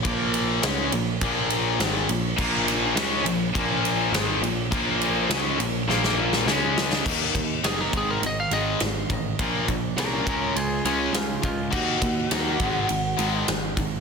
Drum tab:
CC |----------------|x---------------|----------------|x---------------|
RD |x-x-x-x-x-x-x-x-|--x-x-x-x-x-x-x-|x-x-x-x---------|--x-x-x-x-x-x-x-|
SD |----o-------o---|--o-o-------o---|----o---oo-oo-oo|----o-------o---|
BD |o-------o-------|o-------o-------|o---------------|o-o---o-------o-|

CC |----------------|x---------------|
RD |x-x-x-x-x-x-x-x-|--x-x-x-x-x-x-x-|
SD |----o-------o---|----o-------o---|
BD |o-o---o-------o-|o-o---o-------o-|